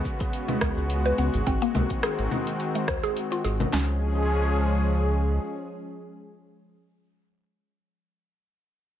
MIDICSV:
0, 0, Header, 1, 6, 480
1, 0, Start_track
1, 0, Key_signature, -5, "major"
1, 0, Tempo, 566038
1, 1244, Time_signature, 4, 2, 24, 8
1, 7625, End_track
2, 0, Start_track
2, 0, Title_t, "Synth pluck"
2, 0, Program_c, 0, 84
2, 0, Note_on_c, 0, 68, 88
2, 272, Note_off_c, 0, 68, 0
2, 414, Note_on_c, 0, 56, 82
2, 512, Note_off_c, 0, 56, 0
2, 522, Note_on_c, 0, 56, 78
2, 648, Note_off_c, 0, 56, 0
2, 895, Note_on_c, 0, 71, 76
2, 957, Note_off_c, 0, 71, 0
2, 1003, Note_on_c, 0, 59, 69
2, 1128, Note_off_c, 0, 59, 0
2, 1244, Note_on_c, 0, 60, 79
2, 1368, Note_off_c, 0, 60, 0
2, 1374, Note_on_c, 0, 58, 107
2, 1478, Note_off_c, 0, 58, 0
2, 1484, Note_on_c, 0, 56, 80
2, 1608, Note_off_c, 0, 56, 0
2, 1723, Note_on_c, 0, 68, 94
2, 2193, Note_off_c, 0, 68, 0
2, 2335, Note_on_c, 0, 56, 79
2, 2433, Note_off_c, 0, 56, 0
2, 2442, Note_on_c, 0, 72, 101
2, 2567, Note_off_c, 0, 72, 0
2, 2573, Note_on_c, 0, 68, 107
2, 2636, Note_off_c, 0, 68, 0
2, 2814, Note_on_c, 0, 65, 76
2, 2918, Note_off_c, 0, 65, 0
2, 2921, Note_on_c, 0, 68, 76
2, 2997, Note_off_c, 0, 68, 0
2, 3162, Note_on_c, 0, 61, 83
2, 3386, Note_off_c, 0, 61, 0
2, 7625, End_track
3, 0, Start_track
3, 0, Title_t, "Analog synth pad"
3, 0, Program_c, 1, 89
3, 0, Note_on_c, 1, 49, 85
3, 0, Note_on_c, 1, 56, 83
3, 0, Note_on_c, 1, 59, 81
3, 0, Note_on_c, 1, 66, 94
3, 1224, Note_off_c, 1, 49, 0
3, 1225, Note_off_c, 1, 59, 0
3, 1241, Note_on_c, 1, 51, 88
3, 1241, Note_on_c, 1, 60, 79
3, 3129, Note_off_c, 1, 56, 0
3, 3130, Note_off_c, 1, 66, 0
3, 3143, Note_off_c, 1, 51, 0
3, 3143, Note_off_c, 1, 60, 0
3, 3160, Note_on_c, 1, 68, 102
3, 3161, Note_on_c, 1, 53, 88
3, 3161, Note_on_c, 1, 61, 87
3, 3163, Note_on_c, 1, 56, 85
3, 5726, Note_off_c, 1, 68, 0
3, 5727, Note_off_c, 1, 53, 0
3, 5727, Note_off_c, 1, 61, 0
3, 5728, Note_off_c, 1, 56, 0
3, 7625, End_track
4, 0, Start_track
4, 0, Title_t, "Analog synth bass"
4, 0, Program_c, 2, 38
4, 655, Note_on_c, 2, 37, 107
4, 957, Note_off_c, 2, 37, 0
4, 1005, Note_on_c, 2, 37, 100
4, 1100, Note_off_c, 2, 37, 0
4, 1135, Note_on_c, 2, 32, 87
4, 1215, Note_off_c, 2, 32, 0
4, 1245, Note_on_c, 2, 32, 103
4, 1340, Note_off_c, 2, 32, 0
4, 1483, Note_on_c, 2, 36, 89
4, 1579, Note_off_c, 2, 36, 0
4, 1855, Note_on_c, 2, 32, 93
4, 1934, Note_off_c, 2, 32, 0
4, 2923, Note_on_c, 2, 32, 99
4, 3105, Note_off_c, 2, 32, 0
4, 3164, Note_on_c, 2, 37, 102
4, 4570, Note_off_c, 2, 37, 0
4, 7625, End_track
5, 0, Start_track
5, 0, Title_t, "Udu"
5, 524, Note_on_c, 9, 64, 93
5, 609, Note_off_c, 9, 64, 0
5, 1133, Note_on_c, 9, 64, 97
5, 1218, Note_off_c, 9, 64, 0
5, 1481, Note_on_c, 9, 64, 85
5, 1566, Note_off_c, 9, 64, 0
5, 2443, Note_on_c, 9, 64, 81
5, 2527, Note_off_c, 9, 64, 0
5, 7625, End_track
6, 0, Start_track
6, 0, Title_t, "Drums"
6, 43, Note_on_c, 9, 82, 74
6, 45, Note_on_c, 9, 36, 58
6, 128, Note_off_c, 9, 82, 0
6, 129, Note_off_c, 9, 36, 0
6, 172, Note_on_c, 9, 42, 51
6, 174, Note_on_c, 9, 82, 31
6, 176, Note_on_c, 9, 36, 103
6, 257, Note_off_c, 9, 42, 0
6, 258, Note_off_c, 9, 82, 0
6, 261, Note_off_c, 9, 36, 0
6, 281, Note_on_c, 9, 42, 72
6, 283, Note_on_c, 9, 82, 46
6, 366, Note_off_c, 9, 42, 0
6, 368, Note_off_c, 9, 82, 0
6, 410, Note_on_c, 9, 42, 33
6, 410, Note_on_c, 9, 64, 81
6, 495, Note_off_c, 9, 42, 0
6, 495, Note_off_c, 9, 64, 0
6, 520, Note_on_c, 9, 37, 77
6, 521, Note_on_c, 9, 82, 77
6, 525, Note_on_c, 9, 36, 91
6, 605, Note_off_c, 9, 37, 0
6, 606, Note_off_c, 9, 82, 0
6, 610, Note_off_c, 9, 36, 0
6, 654, Note_on_c, 9, 82, 34
6, 739, Note_off_c, 9, 82, 0
6, 761, Note_on_c, 9, 42, 71
6, 762, Note_on_c, 9, 82, 45
6, 845, Note_off_c, 9, 42, 0
6, 847, Note_off_c, 9, 82, 0
6, 894, Note_on_c, 9, 82, 28
6, 979, Note_off_c, 9, 82, 0
6, 1003, Note_on_c, 9, 82, 78
6, 1088, Note_off_c, 9, 82, 0
6, 1134, Note_on_c, 9, 42, 32
6, 1135, Note_on_c, 9, 82, 32
6, 1219, Note_off_c, 9, 42, 0
6, 1220, Note_off_c, 9, 82, 0
6, 1243, Note_on_c, 9, 42, 67
6, 1244, Note_on_c, 9, 82, 44
6, 1245, Note_on_c, 9, 36, 118
6, 1328, Note_off_c, 9, 42, 0
6, 1329, Note_off_c, 9, 82, 0
6, 1330, Note_off_c, 9, 36, 0
6, 1373, Note_on_c, 9, 42, 35
6, 1375, Note_on_c, 9, 82, 30
6, 1458, Note_off_c, 9, 42, 0
6, 1460, Note_off_c, 9, 82, 0
6, 1482, Note_on_c, 9, 64, 82
6, 1484, Note_on_c, 9, 82, 74
6, 1567, Note_off_c, 9, 64, 0
6, 1569, Note_off_c, 9, 82, 0
6, 1612, Note_on_c, 9, 42, 30
6, 1614, Note_on_c, 9, 82, 32
6, 1617, Note_on_c, 9, 36, 58
6, 1697, Note_off_c, 9, 42, 0
6, 1699, Note_off_c, 9, 82, 0
6, 1702, Note_off_c, 9, 36, 0
6, 1722, Note_on_c, 9, 37, 81
6, 1722, Note_on_c, 9, 42, 70
6, 1724, Note_on_c, 9, 82, 45
6, 1807, Note_off_c, 9, 37, 0
6, 1807, Note_off_c, 9, 42, 0
6, 1809, Note_off_c, 9, 82, 0
6, 1854, Note_on_c, 9, 42, 46
6, 1856, Note_on_c, 9, 82, 30
6, 1939, Note_off_c, 9, 42, 0
6, 1940, Note_off_c, 9, 82, 0
6, 1962, Note_on_c, 9, 64, 65
6, 1964, Note_on_c, 9, 82, 82
6, 2047, Note_off_c, 9, 64, 0
6, 2049, Note_off_c, 9, 82, 0
6, 2094, Note_on_c, 9, 42, 49
6, 2095, Note_on_c, 9, 82, 34
6, 2178, Note_off_c, 9, 42, 0
6, 2180, Note_off_c, 9, 82, 0
6, 2203, Note_on_c, 9, 42, 70
6, 2204, Note_on_c, 9, 82, 43
6, 2288, Note_off_c, 9, 42, 0
6, 2289, Note_off_c, 9, 82, 0
6, 2334, Note_on_c, 9, 42, 33
6, 2336, Note_on_c, 9, 82, 31
6, 2419, Note_off_c, 9, 42, 0
6, 2421, Note_off_c, 9, 82, 0
6, 2442, Note_on_c, 9, 37, 83
6, 2444, Note_on_c, 9, 82, 74
6, 2446, Note_on_c, 9, 36, 98
6, 2527, Note_off_c, 9, 37, 0
6, 2528, Note_off_c, 9, 82, 0
6, 2531, Note_off_c, 9, 36, 0
6, 2574, Note_on_c, 9, 42, 35
6, 2575, Note_on_c, 9, 82, 34
6, 2658, Note_off_c, 9, 42, 0
6, 2660, Note_off_c, 9, 82, 0
6, 2684, Note_on_c, 9, 42, 71
6, 2685, Note_on_c, 9, 82, 45
6, 2769, Note_off_c, 9, 42, 0
6, 2770, Note_off_c, 9, 82, 0
6, 2814, Note_on_c, 9, 42, 33
6, 2816, Note_on_c, 9, 82, 30
6, 2899, Note_off_c, 9, 42, 0
6, 2900, Note_off_c, 9, 82, 0
6, 2924, Note_on_c, 9, 82, 75
6, 3009, Note_off_c, 9, 82, 0
6, 3054, Note_on_c, 9, 42, 35
6, 3054, Note_on_c, 9, 64, 86
6, 3056, Note_on_c, 9, 82, 33
6, 3139, Note_off_c, 9, 42, 0
6, 3139, Note_off_c, 9, 64, 0
6, 3141, Note_off_c, 9, 82, 0
6, 3165, Note_on_c, 9, 38, 107
6, 3165, Note_on_c, 9, 39, 87
6, 3249, Note_off_c, 9, 38, 0
6, 3249, Note_off_c, 9, 39, 0
6, 7625, End_track
0, 0, End_of_file